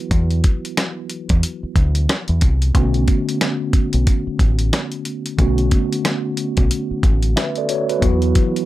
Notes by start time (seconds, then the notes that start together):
0.11 E2, kick, closed hi-hat
0.31 closed hi-hat
0.44 kick, closed hi-hat
0.65 closed hi-hat
0.77 cross-stick, snare, closed hi-hat
1.10 closed hi-hat
1.29 E2, kick, closed hi-hat
1.43 closed hi-hat
1.63 muted fingered electric bass stroke
1.76 D2, kick, closed hi-hat
1.95 closed hi-hat
2.09 cross-stick, snare, closed hi-hat
2.28 E2, closed hi-hat
2.41 C2, kick, closed hi-hat
2.62 closed hi-hat
2.74 B1 D3 A3 B3 C#4, kick, closed hi-hat
2.78 F#4
2.94 closed hi-hat
3.08 kick, closed hi-hat
3.29 closed hi-hat
3.41 cross-stick, snare, closed hi-hat
3.73 kick, closed hi-hat
3.93 B1, closed hi-hat
4.07 kick, closed hi-hat
4.27 muted fingered electric bass stroke
4.39 A1, kick, closed hi-hat
4.59 closed hi-hat
4.73 cross-stick, snare, closed hi-hat
4.92 closed hi-hat
5.05 closed hi-hat
5.26 closed hi-hat
5.37 B1 D3 A3 B3 C#4, kick, closed hi-hat
5.42 F#4
5.58 closed hi-hat
5.71 kick, closed hi-hat
5.93 closed hi-hat
6.05 cross-stick, snare, closed hi-hat
6.37 closed hi-hat
6.57 B1, kick, closed hi-hat
6.71 closed hi-hat
6.91 muted fingered electric bass stroke
7.03 A1, kick, closed hi-hat
7.22 closed hi-hat
7.36 B4 E5, cross-stick, snare, closed hi-hat
7.55 A4 D5, closed hi-hat
7.69 F#4 C#5, closed hi-hat
7.89 F#4 B4, closed hi-hat
7.99 E2 E3 F#3 B3 E4, kick, closed hi-hat
8.03 F#4
8.22 closed hi-hat
8.35 kick, closed hi-hat
8.56 closed hi-hat